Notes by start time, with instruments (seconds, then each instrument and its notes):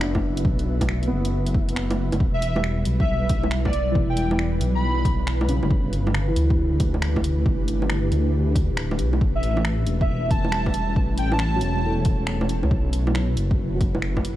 Already playing: detuned saw bass F#1, ambient pad A3 E4 F#4 B4, upright piano B3, synth texture E5
0.00 upright piano D4, finger snap
0.15 kick, low bongo
0.37 closed hi-hat
0.45 detuned saw bass B1, kick
0.59 closed hi-hat
0.81 kick, closed hi-hat, low bongo
0.89 finger snap
1.03 closed hi-hat
1.08 detuned saw bass F#1, upright piano B3
1.25 closed hi-hat
1.47 closed hi-hat
1.55 kick
1.69 closed hi-hat
1.76 detuned saw bass F#1, finger snap
1.91 closed hi-hat, low bongo
2.12 detuned saw bass F#1, closed hi-hat, low bongo
2.20 detuned saw bass E1, ambient pad G3 B3 E4 B4, kick
2.34 digital synth lead E5
2.42 closed hi-hat
2.55 upright piano G3, low bongo
2.64 finger snap
2.85 detuned saw bass B1, closed hi-hat
3.00 digital synth lead E5, kick
3.29 kick, closed hi-hat
3.43 low bongo
3.51 finger snap
3.65 digital synth lead D5, kick, low bongo
3.73 closed hi-hat
3.92 detuned saw bass E1, upright piano E3, kick
4.10 digital synth lead G5
4.17 digital synth lead G5, closed hi-hat
4.31 low bongo
4.39 finger snap
4.61 detuned saw bass B1, closed hi-hat
4.75 digital synth lead B5
5.05 kick, closed hi-hat
5.27 finger snap
5.41 low bongo
5.48 detuned saw bass B1, upright piano C#3, closed hi-hat
5.63 detuned saw bass G1, low bongo
5.71 detuned saw bass G1, ambient pad A3 D4 G4, kick
5.93 closed hi-hat
6.07 low bongo
6.15 finger snap
6.28 upright piano E3
6.36 detuned saw bass D2, closed hi-hat
6.50 kick
6.80 kick, closed hi-hat
6.94 low bongo
7.02 finger snap
7.16 kick, low bongo
7.24 closed hi-hat
7.46 detuned saw bass G1, kick
7.68 closed hi-hat
7.82 low bongo
7.90 finger snap
8.12 detuned saw bass D2, closed hi-hat
8.55 kick, closed hi-hat
8.70 detuned saw bass D1
8.77 finger snap
8.91 low bongo
8.99 detuned saw bass B1, closed hi-hat
9.13 low bongo
9.21 detuned saw bass A1, ambient pad C#4 E4, kick
9.35 digital synth lead E5
9.43 closed hi-hat
9.57 low bongo
9.65 finger snap
9.87 detuned saw bass E1, closed hi-hat
10.01 digital synth lead E5, kick
10.31 digital synth lead A5, kick, closed hi-hat
10.45 low bongo
10.51 upright piano G3, finger snap
10.66 kick, low bongo
10.74 closed hi-hat
10.96 detuned saw bass A1, ambient pad C#5, kick
11.18 digital synth lead G5, closed hi-hat
11.32 digital synth lead A5, low bongo
11.39 finger snap
11.56 upright piano F#3
11.61 detuned saw bass E1, closed hi-hat
11.86 upright piano A3
12.05 kick, closed hi-hat
12.27 finger snap
12.41 low bongo
12.49 detuned saw bass E1, closed hi-hat
12.63 detuned saw bass C#2, low bongo
12.71 detuned saw bass B1, ambient pad A3 E4 F#4 B4, kick
12.93 closed hi-hat
13.07 low bongo
13.15 finger snap
13.37 detuned saw bass F#1, closed hi-hat
13.51 kick
13.75 upright piano F#3
13.81 kick, closed hi-hat
13.95 low bongo
14.02 finger snap
14.17 kick, low bongo
14.25 closed hi-hat